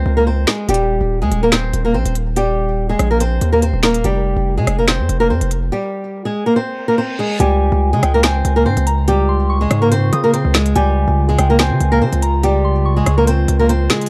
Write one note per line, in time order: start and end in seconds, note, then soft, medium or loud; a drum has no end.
0.00 0.15 C4 medium
0.00 0.15 C5 medium
0.06 0.46 C#2 loud
0.17 0.27 A#3 medium
0.17 0.26 A#4 medium
0.27 0.47 C4 medium
0.27 0.47 C5 medium
0.47 0.68 G#3 medium
0.47 0.67 G#4 medium
0.47 finger snap medium
0.47 snare loud
0.69 0.99 D#1 loud
0.69 1.19 G3 medium
0.69 1.19 G4 loud
0.69 closed hi-hat medium
0.74 closed hi-hat medium
1.01 1.23 D#1 loud
1.22 1.31 D#2 loud
1.22 1.42 G#3 medium
1.22 1.42 G#4 medium
1.32 1.72 D#1 loud
1.32 closed hi-hat medium
1.43 1.53 A#3 medium
1.43 1.52 A#4 medium
1.52 1.83 C4 medium
1.52 1.83 C5 medium
1.52 finger snap loud
1.52 snare loud
1.52 closed hi-hat medium
1.73 1.96 D#1 loud
1.73 closed hi-hat medium
1.85 1.94 A#3 medium
1.85 1.94 A#4 medium
1.94 2.05 A#1 loud
1.94 2.15 C4 medium
1.94 2.14 C5 medium
2.06 2.96 D#1 loud
2.06 closed hi-hat medium
2.15 closed hi-hat medium
2.36 2.87 G3 medium
2.36 2.86 G4 loud
2.36 closed hi-hat medium
2.89 3.10 G#3 medium
2.89 3.09 G#4 medium
2.99 3.40 A#1 loud
2.99 cross-stick medium
2.99 closed hi-hat medium
3.11 3.20 A#3 medium
3.11 3.20 A#4 medium
3.20 3.51 C4 medium
3.20 3.51 C5 medium
3.20 closed hi-hat medium
3.41 3.72 D#2 loud
3.41 closed hi-hat medium
3.52 3.62 A#3 medium
3.52 3.62 A#4 medium
3.62 3.83 C4 medium
3.62 3.82 C5 medium
3.62 closed hi-hat medium
3.73 4.03 D#1 loud
3.83 4.04 A#3 medium
3.83 4.03 A#4 medium
3.83 finger snap medium
3.83 snare loud
3.83 closed hi-hat medium
3.94 closed hi-hat medium
4.04 4.35 F1 loud
4.04 4.55 G3 medium
4.04 4.54 G4 loud
4.04 closed hi-hat medium
4.36 4.59 F1 loud
4.57 4.67 C3 loud
4.57 4.78 G#3 medium
4.57 4.77 G#4 medium
4.67 5.01 F1 loud
4.67 cross-stick medium
4.67 closed hi-hat medium
4.78 4.88 A#3 medium
4.78 4.88 A#4 medium
4.88 5.19 C4 medium
4.88 5.18 C5 medium
4.88 finger snap loud
4.88 snare loud
4.88 closed hi-hat medium
4.99 5.09 F2 loud
5.09 5.32 F1 loud
5.09 closed hi-hat medium
5.20 5.30 A#3 medium
5.20 5.29 A#4 medium
5.30 5.41 F2 loud
5.30 5.50 C4 medium
5.30 5.50 C5 medium
5.41 5.71 F1 loud
5.41 closed hi-hat medium
5.51 closed hi-hat medium
5.72 6.22 G3 medium
5.72 6.22 G4 loud
6.25 6.45 G#3 medium
6.25 6.45 G#4 medium
6.46 6.56 A#3 medium
6.46 6.55 A#4 medium
6.56 6.87 C4 medium
6.56 6.86 C5 medium
6.56 reverse cymbal medium
6.88 6.98 A#3 medium
6.88 6.97 A#4 medium
6.98 7.18 C4 medium
6.98 7.18 C5 medium
7.19 7.39 G#3 medium
7.19 7.39 G#4 medium
7.40 7.71 C#2 loud
7.40 14.07 C#3 medium
7.40 7.90 G3 medium
7.40 14.09 F4 medium
7.40 7.90 G4 loud
7.40 7.99 G#5 loud
7.40 closed hi-hat medium
7.72 7.94 C#2 loud
7.93 8.02 C#3 loud
7.93 8.13 G#3 medium
7.93 8.13 G#4 medium
8.03 8.43 C#2 loud
8.03 8.23 G5 medium
8.03 cross-stick medium
8.03 closed hi-hat medium
8.14 8.24 A#3 medium
8.14 8.23 A#4 medium
8.23 8.54 C4 medium
8.23 8.54 C5 medium
8.23 8.83 G#5 medium
8.23 finger snap loud
8.23 snare loud
8.23 closed hi-hat medium
8.45 8.67 C#2 loud
8.45 closed hi-hat medium
8.56 8.66 A#3 medium
8.56 8.65 A#4 medium
8.66 8.76 G#2 loud
8.66 8.86 C4 medium
8.66 8.86 C5 medium
8.77 9.67 C#2 loud
8.77 closed hi-hat medium
8.87 9.07 A#5 medium
8.87 closed hi-hat medium
9.08 9.58 G3 medium
9.08 9.58 G4 loud
9.08 closed hi-hat medium
9.29 9.49 C6 medium
9.50 10.09 C#6 medium
9.61 9.81 G#3 medium
9.61 9.81 G#4 medium
9.71 10.11 G#2 loud
9.71 cross-stick medium
9.71 closed hi-hat medium
9.82 9.92 A#3 medium
9.82 9.91 A#4 medium
9.92 10.22 C4 medium
9.92 10.22 C5 medium
9.92 closed hi-hat medium
10.13 10.43 C#3 loud
10.13 10.33 D#6 medium
10.13 closed hi-hat medium
10.24 10.33 A#3 medium
10.24 10.33 A#4 medium
10.33 10.54 C4 medium
10.33 10.53 C5 medium
10.33 closed hi-hat medium
10.45 10.74 C#2 loud
10.54 10.75 G#3 medium
10.54 10.74 G#4 medium
10.54 finger snap loud
10.54 snare loud
10.54 closed hi-hat medium
10.66 closed hi-hat medium
10.76 11.06 C#2 loud
10.76 11.26 G3 medium
10.76 11.25 G4 loud
10.76 11.35 G#5 loud
10.76 closed hi-hat medium
11.08 11.37 C#2 loud
11.29 11.49 G#3 medium
11.29 11.49 G#4 medium
11.38 11.72 C#2 loud
11.38 11.59 G5 medium
11.38 cross-stick medium
11.38 closed hi-hat medium
11.50 11.59 A#3 medium
11.50 11.59 A#4 medium
11.59 11.90 C4 medium
11.59 11.90 C5 medium
11.59 12.19 G#5 medium
11.59 finger snap loud
11.59 snare loud
11.59 closed hi-hat medium
11.71 11.80 C#3 loud
11.80 12.03 C#2 loud
11.80 closed hi-hat medium
11.92 12.01 A#3 medium
11.92 12.01 A#4 medium
12.01 12.12 C#3 loud
12.01 12.22 C4 medium
12.01 12.21 C5 medium
12.13 13.03 C#2 loud
12.13 closed hi-hat medium
12.22 12.42 A#5 medium
12.22 closed hi-hat medium
12.43 12.94 G3 medium
12.43 12.93 G4 loud
12.43 closed hi-hat medium
12.65 12.84 C6 medium
12.85 13.25 C#6 medium
12.96 13.17 G#3 medium
12.96 13.16 G#4 medium
13.06 13.47 C#2 loud
13.06 cross-stick medium
13.06 closed hi-hat medium
13.18 13.27 A#3 medium
13.18 13.27 A#4 medium
13.27 13.58 C4 medium
13.27 13.57 C5 loud
13.27 closed hi-hat medium
13.48 13.89 C#2 loud
13.48 closed hi-hat medium
13.59 13.69 A#3 medium
13.59 13.69 A#4 medium
13.69 13.90 C4 medium
13.69 13.89 C5 medium
13.69 closed hi-hat medium
13.90 14.09 G#3 medium
13.90 14.09 G#4 medium
13.90 finger snap medium
13.90 snare loud
13.90 closed hi-hat medium
14.01 closed hi-hat medium